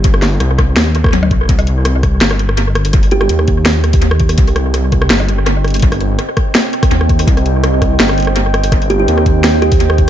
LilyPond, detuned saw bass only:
\new Staff \with { instrumentName = "Detuned saw bass" } { \clef bass \time 4/4 \key c \minor \tempo 4 = 166 g,,4 c,4 ees,2 | c,2 g,,2~ | g,,4 ees,2. | c,2 g,,2~ |
g,,4 r2 ees,4 | c,2 g,,2~ | g,,4 ees,2. | }